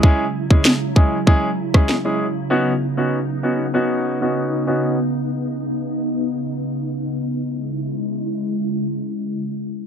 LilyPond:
<<
  \new Staff \with { instrumentName = "Grand piano" } { \time 4/4 \key cis \minor \tempo 4 = 97 <gis cis' e' gis'>16 r8 <gis cis' e' gis'>16 r8 <gis cis' e' gis'>16 r16 <gis cis' e' gis'>16 r8 <gis cis' e' gis'>16 r16 <gis cis' e' gis'>16 r8 | <b cis' dis' fis'>16 r8 <b cis' dis' fis'>16 r8 <b cis' dis' fis'>16 r16 <b cis' dis' fis'>8. <b cis' dis' fis'>8. <b cis' dis' fis'>8 | r1 | r1 | }
  \new Staff \with { instrumentName = "Ambient pad" } { \time 4/4 \key cis \minor << { <fis e'>1 | <b dis'>1~ | <b dis'>1 | <cis gis e'>1 | } \\ { cis1~ | cis1~ | cis1 | r1 | } >> }
  \new DrumStaff \with { instrumentName = "Drums" } \drummode { \time 4/4 bd8. bd16 sn8 bd8 bd8. <bd ss>16 sn4 | r4 r4 r4 r4 | r4 r4 r4 r4 | r4 r4 r4 r4 | }
>>